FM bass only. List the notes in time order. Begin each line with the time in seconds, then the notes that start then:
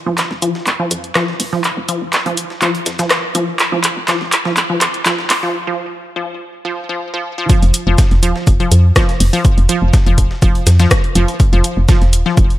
0.06 F1
0.31 F1
0.42 D#1
0.67 F1
0.91 F2
1.40 F1
1.77 F1
2.02 F1
2.26 F1
2.37 D#1
2.62 F1
2.86 F2
3.35 F1
3.72 F1
3.97 F1
4.21 F1
4.32 D#1
4.57 F1
4.81 F2
5.30 F1
7.62 F1
7.87 F1
8.11 F1
8.23 D#1
8.47 F1
8.71 F2
9.20 F1
9.58 F1
9.82 F1
10.06 F1
10.18 D#1
10.42 F1
10.67 F2
11.15 F1
11.53 F1
11.77 F1
12.01 F1
12.13 D#1
12.37 F1